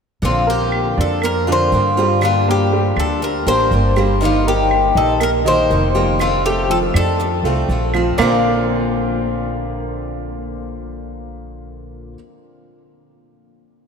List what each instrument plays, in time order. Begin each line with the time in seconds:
0.22 upright bass A#1, steel-string acoustic guitar D3 A#3 C4 F4, grand piano D3 D4, cuban tres F4
0.47 grand piano A#3 A#4, cuban tres G4
0.72 claves
0.97 upright bass F2, grand piano D4 D5, cuban tres A4
1.22 grand piano A#3 A#4, cuban tres A#4, muted steel-string acoustic guitar stroke, claves
1.47 grand piano D3 D4, steel-string acoustic guitar A#3 C4 F4
1.52 cuban tres C5
1.72 upright bass G2, steel-string acoustic guitar D3 A#3 C4 F4
1.97 grand piano G3 G4, steel-string acoustic guitar A#3 C4 F4
2.21 steel-string acoustic guitar D3 G3 A#3 D4 G4, cuban tres F4, claves
2.48 grand piano A#3 A#4, cuban tres G4
2.73 grand piano G3 G4
2.96 upright bass D2, grand piano D4 D5, cuban tres A4, claves
3.22 cuban tres A#4, muted steel-string acoustic guitar stroke
3.46 upright bass A1, steel-string acoustic guitar G3 A#3 D4 G4, grand piano A#3 A#4, cuban tres C5
3.71 upright bass G1, steel-string acoustic guitar G3 A#3 D4 G4
3.96 grand piano G3 G4, steel-string acoustic guitar G3 A#3 D4 G4, claves
4.21 steel-string acoustic guitar D#3 G3 A#3 D#4 G4, grand piano D#3 D#4
4.25 cuban tres F4
4.47 grand piano A#3 A#4, cuban tres G4
4.71 claves
4.95 upright bass A#1, grand piano D#4 D#5, cuban tres A4
5.20 grand piano A#3 A#4, cuban tres A#4, muted steel-string acoustic guitar stroke, claves
5.45 grand piano D#3 D#4, steel-string acoustic guitar G3 A#3 D#4 G4, cuban tres C5
5.70 upright bass F1, steel-string acoustic guitar G3 A#3 D#4 G4
5.95 grand piano F3 F4, steel-string acoustic guitar G3 A#3 D#4 G4
6.19 steel-string acoustic guitar D3 A3 C4 F4, cuban tres F4, claves
6.46 grand piano A3 A4, cuban tres G4
6.70 grand piano F3 F4, cuban tres A4
6.94 upright bass F2, grand piano D4 D5, cuban tres A4, claves
7.20 muted steel-string acoustic guitar stroke
7.43 upright bass C2, grand piano A3 A4, steel-string acoustic guitar C4 F4
7.47 steel-string acoustic guitar A3
7.69 upright bass A#1, steel-string acoustic guitar D3 A3 C4 F4
7.94 grand piano F3 F4, steel-string acoustic guitar A3 C4 F4, claves
8.18 upright bass A#1, steel-string acoustic guitar A#2 D3 A#3 C4, grand piano A#3 F4 A#4 C5 D5 F5, cuban tres D5, claves
8.22 steel-string acoustic guitar F4